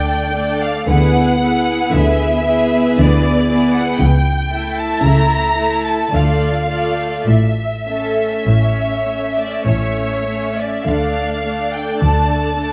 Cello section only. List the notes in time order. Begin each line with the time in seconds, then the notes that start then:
Already playing: D3
0.88 D3
1.94 D3
2.99 D3
4.00 C#3
5.03 C#3
6.13 D3
7.27 A2
8.47 A2
9.68 A2
10.87 D3
12.02 D3